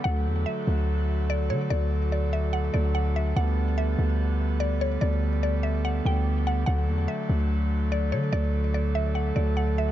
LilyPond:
<<
  \new Staff \with { instrumentName = "Synth pluck" } { \time 4/4 \key d \major \tempo 4 = 145 fis''4 e''4 r4 d''8 cis''8 | d''4 d''8 e''8 fis''8 d''8 fis''8 e''8 | fis''4 e''4 r4 d''8 cis''8 | d''4 d''8 e''8 fis''8 g''4 fis''8 |
fis''4 e''4 r4 d''8 cis''8 | d''4 d''8 e''8 fis''8 d''8 fis''8 e''8 | }
  \new Staff \with { instrumentName = "Pipe organ" } { \time 4/4 \key d \major a'1~ | a'1~ | a'1~ | a'1 |
a'1~ | a'1 | }
  \new Staff \with { instrumentName = "Pipe organ" } { \clef bass \time 4/4 \key d \major << { <fis a>1~ | <fis a>1 | <g b>1~ | <g b>1 |
<fis a>1~ | <fis a>1 | } \\ { d1~ | d1~ | d1~ | d1~ |
d1~ | d1 | } >> }
  \new Staff \with { instrumentName = "808-style bass" } { \clef bass \time 4/4 \key d \major d,8 e,8 r8 d,2 d8 | d,2~ d,8 d,4. | d,4. d,2~ d,8 | d,2~ d,8 d,4. |
d,8 e,8 r8 d,2 d8 | d,2~ d,8 d,4. | }
>>